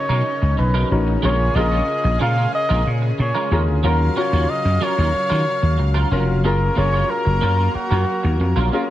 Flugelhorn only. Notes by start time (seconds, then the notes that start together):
Already playing: C#5
0.58 B4
1.24 C#5
1.56 D#5
2.22 F5
2.55 D#5
3.21 C#5
3.84 A#4
4.17 C#5
4.50 D#5
4.83 C#5
6.46 A#4
6.78 C#5
7.10 A#4
7.75 F#4
8.74 F4